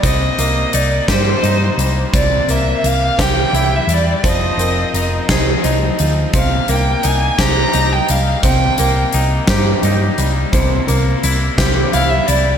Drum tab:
HH |xxxxxx|xxxxxx|xxxxxx|xxxxxx|
SD |---o--|---o--|---o--|---o--|
BD |o--o--|o--o--|o--o--|o--o--|

HH |xxxxxx|xxxxxx|
SD |---o--|---o--|
BD |o--o--|o--o--|